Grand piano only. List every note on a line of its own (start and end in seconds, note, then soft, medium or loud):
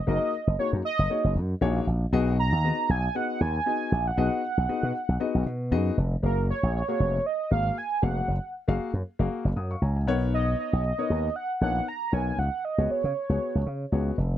0.07 0.30 A#3 medium
0.07 0.30 D#4 medium
0.07 0.30 F#4 medium
0.07 0.30 G#4 medium
0.07 0.30 A#4 medium
0.59 0.82 A#3 medium
0.59 0.82 D#4 medium
0.59 0.82 F#4 medium
0.59 0.82 G#4 medium
0.59 0.82 C#5 medium
1.10 1.33 A#3 medium
1.10 1.33 D#4 medium
1.10 1.33 F#4 medium
1.10 1.33 G#4 medium
1.10 1.33 C#5 medium
1.61 1.84 A#3 loud
1.61 1.84 D#4 medium
1.61 1.84 F#4 medium
1.61 1.84 G#4 medium
1.61 1.84 C#5 loud
2.13 2.35 B3 loud
2.13 2.35 D#4 loud
2.13 2.36 F#4 loud
2.13 2.36 G#4 loud
2.13 2.36 D#5 loud
2.64 2.87 B3 medium
2.64 2.87 D#4 medium
2.64 2.87 F#4 medium
2.64 2.87 G#4 medium
2.64 2.87 D#5 medium
3.15 3.38 B3 medium
3.15 3.38 D#4 medium
3.15 3.38 F#4 medium
3.15 3.38 G#4 medium
3.15 3.38 D#5 medium
3.66 3.89 B3 medium
3.66 3.89 D#4 medium
3.66 3.89 F#4 medium
3.66 3.89 G#4 medium
3.66 3.89 D#5 medium
4.17 4.40 B3 medium
4.17 4.40 D#4 medium
4.17 4.40 F#4 medium
4.17 4.40 G#4 medium
4.17 4.41 D#5 loud
4.69 4.92 B3 medium
4.69 4.92 D#4 medium
4.69 4.92 F#4 medium
4.69 4.92 G#4 medium
4.69 4.92 D#5 medium
5.20 5.43 B3 medium
5.20 5.43 D#4 medium
5.20 5.43 F#4 medium
5.20 5.43 G#4 medium
5.20 5.43 D#5 loud
5.71 5.94 B3 medium
5.71 5.94 D#4 medium
5.71 5.94 F#4 medium
5.71 5.95 G#4 medium
5.71 5.95 D#5 loud
6.23 6.51 A#3 medium
6.23 6.51 F#4 medium
6.23 6.51 G#4 medium
6.23 6.51 F5 medium
6.88 7.16 A#3 medium
6.88 7.16 F#4 medium
6.88 7.16 G#4 medium
6.88 7.16 F5 medium
7.51 7.74 A#3 medium
7.51 7.74 F#4 medium
7.51 7.74 G#4 medium
7.51 7.74 F5 medium
8.02 8.30 A#3 medium
8.02 8.31 F#4 medium
8.02 8.31 G#4 medium
8.02 8.31 F5 medium
8.68 8.90 A#3 medium
8.68 8.90 F#4 medium
8.68 8.90 G#4 medium
8.68 8.90 F5 loud
9.19 9.47 A#3 medium
9.19 9.47 F#4 medium
9.19 9.47 G#4 medium
9.19 9.47 F5 medium
9.57 9.70 F#5 medium
9.57 9.70 D#6 medium
9.71 9.82 F5 medium
9.71 9.81 C#6 medium
9.82 9.96 C#5 medium
9.82 9.95 G#5 medium
9.82 9.96 A#5 medium
9.96 10.21 G#5 medium
10.07 10.80 B3 loud
10.07 10.80 D#4 medium
10.07 10.80 A#4 medium
10.07 10.80 C#5 loud
10.07 10.31 F#5 medium
10.98 11.26 B3 medium
10.98 11.26 D#4 medium
10.98 11.26 A#4 medium
10.98 11.27 C#5 medium
11.61 11.84 B3 medium
11.61 11.84 D#4 medium
11.61 11.84 A#4 medium
11.61 11.84 C#5 medium
12.12 12.38 B3 medium
12.12 12.38 D#4 medium
12.12 12.38 A#4 medium
12.12 12.38 C#5 medium
12.78 13.00 B3 medium
12.78 13.00 F#4 medium
12.78 13.00 G#4 medium
12.78 13.00 C#5 medium
13.29 13.57 B3 medium
13.29 13.57 F#4 medium
13.29 13.57 G#4 medium
13.29 13.57 C#5 medium
13.92 14.15 B3 medium
13.92 14.15 F#4 medium
13.92 14.15 G#4 medium
13.92 14.15 C#5 medium